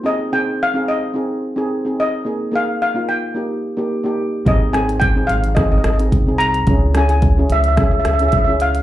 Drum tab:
HH |----------------|----------------|x-xxx-xxx-xxx-xx|x-xxx-xxx-xxx-xx|
SD |----------------|----------------|--r-----r-r-----|--r-----r-r-----|
BD |----------------|----------------|o---o---o---o---|o---o---o---o---|